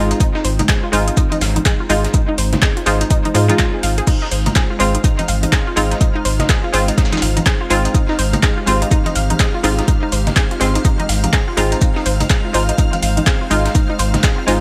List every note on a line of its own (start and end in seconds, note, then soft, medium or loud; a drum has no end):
0.00 0.13 G#1 loud
0.00 0.18 G#3 medium
0.00 4.03 G#3 medium
0.00 4.03 C4 medium
0.00 0.18 D#4 medium
0.00 11.78 D#4 medium
0.00 0.19 F4 loud
0.00 4.03 F4 medium
0.00 11.78 C5 medium
0.11 0.14 D#4 medium
0.11 closed hi-hat soft
0.20 0.26 D#4 loud
0.20 kick loud
0.20 closed hi-hat medium
0.20 shaker medium
0.35 0.41 D#4 loud
0.35 snare soft
0.44 0.62 G#1 medium
0.44 0.54 C5 medium
0.44 open hi-hat loud
0.44 shaker medium
0.59 0.68 D#4 medium
0.59 closed hi-hat soft
0.59 low conga medium
0.69 0.82 G#4 loud
0.69 kick loud
0.69 snare loud
0.69 clap loud
0.69 closed hi-hat medium
0.69 shaker medium
0.83 0.92 F4 medium
0.92 1.10 G#1 medium
0.92 1.87 G#3 medium
0.92 1.87 D#4 medium
0.92 1.88 F4 medium
0.92 1.07 C5 medium
0.92 open hi-hat medium
0.92 shaker medium
1.08 1.11 D#4 medium
1.08 closed hi-hat medium
1.17 1.23 D#4 loud
1.17 kick loud
1.17 closed hi-hat medium
1.17 shaker medium
1.32 1.41 D#4 loud
1.32 closed hi-hat soft
1.32 high conga medium
1.41 1.58 G#1 medium
1.41 1.47 F5 medium
1.41 snare loud
1.41 open hi-hat loud
1.41 shaker medium
1.56 1.65 D#4 medium
1.56 closed hi-hat medium
1.56 high conga medium
1.65 1.79 G#4 loud
1.65 kick loud
1.65 clap loud
1.65 closed hi-hat medium
1.65 shaker medium
1.80 1.89 F4 medium
1.89 2.07 G#1 loud
1.89 2.12 G#3 medium
1.89 1.95 D#4 loud
1.89 2.12 D#4 medium
1.89 2.12 F4 loud
1.89 open hi-hat medium
1.89 shaker medium
2.04 2.08 D#4 medium
2.04 snare soft
2.04 closed hi-hat soft
2.14 2.19 D#4 loud
2.14 kick loud
2.14 closed hi-hat medium
2.14 shaker medium
2.28 2.34 D#4 loud
2.38 2.55 G#1 loud
2.38 2.47 C5 medium
2.38 open hi-hat loud
2.38 shaker medium
2.53 2.62 D#4 medium
2.53 snare soft
2.53 closed hi-hat soft
2.53 low conga medium
2.62 2.76 G#4 loud
2.62 kick loud
2.62 snare loud
2.62 clap loud
2.62 closed hi-hat medium
2.62 shaker medium
2.77 2.86 F4 medium
2.77 closed hi-hat soft
2.86 3.04 G#1 medium
2.86 3.33 G#3 medium
2.86 3.33 D#4 medium
2.86 3.33 F4 medium
2.86 3.00 C5 loud
2.86 snare soft
2.86 open hi-hat medium
2.86 shaker medium
3.01 3.05 D#4 medium
3.01 closed hi-hat medium
3.01 closed hi-hat soft
3.10 3.16 D#4 loud
3.10 kick loud
3.10 closed hi-hat medium
3.10 shaker medium
3.25 3.34 D#4 loud
3.25 closed hi-hat soft
3.25 high conga medium
3.34 3.52 G#2 medium
3.34 3.46 G#3 medium
3.34 3.46 D#4 medium
3.34 3.46 F4 medium
3.34 3.44 C5 medium
3.34 open hi-hat loud
3.34 shaker medium
3.48 4.06 G#3 medium
3.48 4.06 D#4 medium
3.48 4.07 F4 loud
3.48 3.55 G#4 medium
3.48 closed hi-hat medium
3.48 closed hi-hat soft
3.48 high conga medium
3.59 3.68 F4 loud
3.59 kick loud
3.59 snare loud
3.59 clap loud
3.59 closed hi-hat medium
3.59 shaker medium
3.74 3.80 G#4 medium
3.83 4.00 G#1 loud
3.83 3.92 F5 loud
3.83 open hi-hat medium
3.83 shaker medium
3.98 4.04 G#4 loud
3.98 closed hi-hat soft
4.07 14.60 G#3 medium
4.07 14.60 C4 medium
4.07 4.13 D#4 loud
4.07 7.91 F4 medium
4.07 14.60 F5 medium
4.07 14.60 F6 medium
4.07 kick loud
4.07 closed hi-hat medium
4.07 crash medium
4.07 shaker medium
4.22 4.28 D#4 loud
4.22 snare soft
4.32 4.49 G#1 loud
4.32 4.41 C5 medium
4.32 open hi-hat loud
4.32 shaker medium
4.46 4.55 D#4 medium
4.46 closed hi-hat soft
4.46 low conga medium
4.56 4.69 G#4 loud
4.56 kick loud
4.56 snare loud
4.56 clap loud
4.56 closed hi-hat medium
4.56 shaker medium
4.70 4.79 F4 medium
4.79 4.97 G#1 medium
4.79 5.74 G#3 medium
4.79 5.74 C4 medium
4.79 5.75 F4 medium
4.79 4.94 C5 loud
4.79 open hi-hat medium
4.79 shaker medium
4.95 4.98 D#4 medium
4.95 closed hi-hat medium
5.04 5.10 D#4 loud
5.04 kick loud
5.04 closed hi-hat medium
5.04 shaker medium
5.19 5.28 D#4 loud
5.19 closed hi-hat soft
5.19 high conga medium
5.28 5.46 G#1 medium
5.28 5.34 F5 medium
5.28 open hi-hat loud
5.28 shaker medium
5.43 5.52 D#4 medium
5.43 closed hi-hat medium
5.43 high conga medium
5.52 5.66 G#4 loud
5.52 kick loud
5.52 snare loud
5.52 clap loud
5.52 closed hi-hat medium
5.52 shaker medium
5.67 5.76 F4 medium
5.76 5.94 G#1 loud
5.76 5.99 G#3 medium
5.76 5.99 C4 medium
5.76 5.82 D#4 loud
5.76 5.99 F4 loud
5.76 open hi-hat medium
5.76 shaker medium
5.91 5.95 D#4 medium
5.91 snare soft
5.91 closed hi-hat soft
6.01 6.06 D#4 loud
6.01 kick loud
6.01 closed hi-hat medium
6.01 shaker medium
6.15 6.21 D#4 loud
6.25 6.42 G#1 loud
6.25 6.34 C5 medium
6.25 open hi-hat loud
6.25 shaker medium
6.39 6.49 D#4 medium
6.39 snare soft
6.39 closed hi-hat soft
6.39 low conga loud
6.49 6.63 G#4 loud
6.49 kick loud
6.49 snare loud
6.49 clap loud
6.49 closed hi-hat medium
6.49 shaker medium
6.64 6.73 F4 medium
6.72 6.91 G#1 medium
6.72 7.67 G#3 medium
6.72 7.68 C4 medium
6.72 7.69 F4 medium
6.72 6.87 C5 loud
6.72 snare soft
6.72 open hi-hat medium
6.72 shaker medium
6.88 6.92 D#4 medium
6.88 closed hi-hat soft
6.88 closed hi-hat medium
6.98 7.03 D#4 loud
6.98 kick loud
6.98 snare medium
6.98 closed hi-hat medium
6.98 shaker medium
7.05 snare medium
7.05 shaker medium
7.12 7.21 D#4 loud
7.12 snare medium
7.12 closed hi-hat soft
7.12 high conga medium
7.12 shaker medium
7.17 snare medium
7.17 shaker medium
7.22 7.39 G#1 loud
7.22 7.27 F5 medium
7.22 open hi-hat loud
7.22 open hi-hat medium
7.37 7.45 D#4 medium
7.37 closed hi-hat soft
7.37 closed hi-hat medium
7.37 high conga medium
7.46 7.60 G#4 loud
7.46 kick loud
7.46 snare loud
7.46 clap loud
7.46 closed hi-hat medium
7.46 shaker medium
7.61 7.70 F4 medium
7.70 7.88 G#1 loud
7.70 7.92 G#3 medium
7.70 7.92 C4 medium
7.70 7.76 D#4 loud
7.70 7.93 F4 loud
7.70 open hi-hat loud
7.70 shaker medium
7.85 7.89 D#4 medium
7.85 closed hi-hat soft
7.94 8.00 D#4 loud
7.94 11.78 G4 medium
7.94 kick loud
7.94 closed hi-hat medium
7.94 shaker medium
8.09 8.15 D#4 loud
8.09 snare soft
8.19 8.36 G#1 loud
8.19 8.28 C5 medium
8.19 open hi-hat loud
8.19 shaker medium
8.33 8.42 D#4 medium
8.33 closed hi-hat soft
8.33 low conga medium
8.43 8.57 G#4 loud
8.43 kick loud
8.43 snare loud
8.43 clap loud
8.43 closed hi-hat medium
8.43 shaker medium
8.57 8.66 F4 medium
8.66 8.84 G#1 medium
8.66 9.61 G#3 medium
8.66 9.62 C4 medium
8.66 9.62 F4 medium
8.66 8.81 C5 loud
8.66 open hi-hat medium
8.66 shaker medium
8.82 8.85 D#4 medium
8.82 closed hi-hat medium
8.91 8.97 D#4 loud
8.91 kick loud
8.91 closed hi-hat medium
8.91 shaker medium
9.06 9.15 D#4 loud
9.06 closed hi-hat soft
9.06 high conga medium
9.15 9.33 G#1 medium
9.15 9.21 F5 medium
9.15 open hi-hat loud
9.15 shaker medium
9.30 9.39 D#4 medium
9.30 closed hi-hat medium
9.30 high conga medium
9.40 9.53 G#4 loud
9.40 kick loud
9.40 snare loud
9.40 clap loud
9.40 closed hi-hat medium
9.40 shaker medium
9.54 9.63 F4 medium
9.63 9.81 G#1 loud
9.63 9.86 G#3 medium
9.63 9.86 C4 medium
9.63 9.69 D#4 loud
9.63 9.86 F4 loud
9.63 open hi-hat loud
9.63 shaker medium
9.79 9.82 D#4 medium
9.79 snare soft
9.79 closed hi-hat soft
9.88 9.94 D#4 loud
9.88 kick loud
9.88 closed hi-hat medium
9.88 shaker medium
10.03 10.09 D#4 loud
10.12 10.29 G#1 loud
10.12 10.21 C5 medium
10.12 open hi-hat loud
10.12 shaker medium
10.27 10.36 D#4 medium
10.27 snare soft
10.27 closed hi-hat soft
10.27 low conga medium
10.36 10.50 G#4 loud
10.36 kick loud
10.36 snare loud
10.36 clap loud
10.36 closed hi-hat medium
10.36 shaker medium
10.51 10.60 F4 medium
10.51 closed hi-hat soft
10.60 10.78 G#1 medium
10.60 11.55 G#3 medium
10.60 11.55 C4 medium
10.60 11.56 F4 medium
10.60 10.74 C5 medium
10.60 snare soft
10.60 open hi-hat loud
10.60 shaker medium
10.75 10.79 D#4 medium
10.75 closed hi-hat soft
10.85 10.90 D#4 loud
10.85 kick loud
10.85 closed hi-hat medium
10.85 shaker medium
10.99 11.08 D#4 loud
10.99 closed hi-hat soft
10.99 high conga medium
11.09 11.26 G#1 loud
11.09 11.14 F5 medium
11.09 open hi-hat medium
11.09 open hi-hat loud
11.24 11.33 D#4 medium
11.24 closed hi-hat soft
11.24 high conga medium
11.33 11.47 G#4 loud
11.33 kick loud
11.33 snare loud
11.33 clap loud
11.33 closed hi-hat medium
11.33 shaker medium
11.48 11.57 F4 medium
11.57 11.75 G#1 loud
11.57 11.79 G#3 medium
11.57 11.79 C4 medium
11.57 11.63 D#4 loud
11.57 11.80 F4 loud
11.57 open hi-hat medium
11.57 shaker medium
11.72 11.76 D#4 medium
11.72 closed hi-hat soft
11.82 11.87 D#4 loud
11.82 14.60 D#4 medium
11.82 14.60 F4 medium
11.82 14.60 C5 medium
11.82 kick loud
11.82 closed hi-hat medium
11.82 shaker medium
11.96 12.02 D#4 loud
11.96 snare soft
12.06 12.23 G#1 loud
12.06 12.15 C5 medium
12.06 open hi-hat loud
12.06 shaker medium
12.20 12.29 D#4 medium
12.20 closed hi-hat soft
12.20 low conga medium
12.30 12.44 G#4 loud
12.30 kick loud
12.30 snare loud
12.30 clap loud
12.30 closed hi-hat medium
12.30 shaker medium
12.45 12.54 F4 medium
12.53 12.71 G#1 medium
12.53 13.48 G#3 medium
12.53 13.49 D#4 medium
12.53 13.49 F4 medium
12.53 12.68 C5 loud
12.53 open hi-hat medium
12.53 shaker medium
12.69 12.72 D#4 medium
12.69 closed hi-hat medium
12.78 12.84 D#4 loud
12.78 kick loud
12.78 closed hi-hat medium
12.78 shaker medium
12.93 13.01 F5 medium
12.93 closed hi-hat soft
12.93 high conga medium
13.02 13.20 G#1 loud
13.02 13.08 F5 medium
13.02 open hi-hat loud
13.02 shaker medium
13.17 13.26 D#4 medium
13.17 closed hi-hat soft
13.17 high conga medium
13.27 13.40 G#4 loud
13.27 kick loud
13.27 snare loud
13.27 clap loud
13.27 closed hi-hat medium
13.27 shaker medium
13.41 13.50 F4 medium
13.50 13.68 G#1 loud
13.50 13.73 G#3 medium
13.50 13.56 D#4 loud
13.50 13.73 D#4 medium
13.50 13.73 F4 loud
13.50 open hi-hat medium
13.50 shaker medium
13.65 13.69 D#4 medium
13.65 snare soft
13.65 closed hi-hat soft
13.75 13.80 D#4 loud
13.75 kick loud
13.75 closed hi-hat medium
13.75 shaker medium
13.90 13.96 D#4 loud
13.99 14.17 G#1 loud
13.99 14.08 C5 medium
13.99 open hi-hat loud
13.99 shaker medium
14.14 14.23 D#4 medium
14.14 snare soft
14.14 closed hi-hat soft
14.14 low conga medium
14.23 14.37 G#4 loud
14.23 kick loud
14.23 snare loud
14.23 clap loud
14.23 closed hi-hat medium
14.23 shaker medium
14.38 14.47 F4 medium
14.47 14.60 G#1 medium
14.47 14.60 G#3 medium
14.47 14.60 D#4 medium
14.47 14.60 F4 medium
14.47 14.60 C5 loud
14.47 snare soft
14.47 open hi-hat medium
14.47 shaker medium